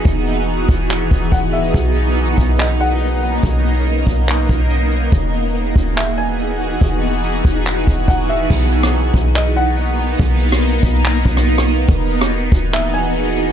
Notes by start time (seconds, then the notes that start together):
Already playing: E3 B3 D#4 F#4 G#4
0.05 E1, kick, closed hi-hat
0.27 closed hi-hat
0.48 closed hi-hat
0.69 E1, kick, open hi-hat
0.90 clap, closed hi-hat
1.11 E1, kick
1.32 E1 F#5, kick, closed hi-hat
1.53 D#1 E5, closed hi-hat
1.74 B1 A#3 C#4 A#4 D#5, kick, closed hi-hat
1.96 closed hi-hat
2.03 closed hi-hat
2.10 closed hi-hat
2.17 closed hi-hat
2.38 B1, kick
2.59 D#5, clap
2.80 F#5
3.01 closed hi-hat
3.22 closed hi-hat
3.43 B1, kick, closed hi-hat
3.65 closed hi-hat
3.72 closed hi-hat
3.79 closed hi-hat
3.86 closed hi-hat
4.07 B1, kick
4.28 clap, closed hi-hat
4.49 B1, kick
4.70 closed hi-hat
4.91 closed hi-hat
5.12 E1 E3 B3 D#4 F#4 G#4 F#5, kick, closed hi-hat
5.34 closed hi-hat
5.41 closed hi-hat
5.48 closed hi-hat
5.55 closed hi-hat
5.76 D#1, kick
5.97 E5, clap, closed hi-hat
6.17 G#5
6.39 closed hi-hat
6.60 closed hi-hat
6.81 E1, kick, closed hi-hat
7.03 closed hi-hat
7.24 closed hi-hat
7.45 E1, kick
7.66 clap, closed hi-hat
7.87 E1, kick
8.08 E1 F#5, kick, closed hi-hat
8.29 D#1 E5, closed hi-hat
8.50 B1 A#3 B3 D#4, kick, crash
8.72 closed hi-hat
8.79 closed hi-hat
8.83 cross-stick, closed hi-hat
8.93 closed hi-hat
9.14 B1, kick
9.35 D#5, clap
9.56 F#5
9.77 closed hi-hat
9.99 closed hi-hat
10.20 B1, kick, closed hi-hat
10.41 closed hi-hat
10.48 closed hi-hat
10.52 cross-stick, closed hi-hat
10.62 closed hi-hat
10.83 B1, kick
11.04 clap, closed hi-hat
11.25 B1, kick
11.37 cross-stick
11.47 closed hi-hat
11.58 cross-stick
11.68 closed hi-hat
11.88 E1 E3 B3 D#4 F#4 G#4, kick, closed hi-hat
12.10 closed hi-hat
12.17 closed hi-hat
12.21 cross-stick, closed hi-hat
12.31 closed hi-hat
12.52 D#1, kick
12.73 E5, clap, closed hi-hat
12.94 G#5
13.15 closed hi-hat
13.37 closed hi-hat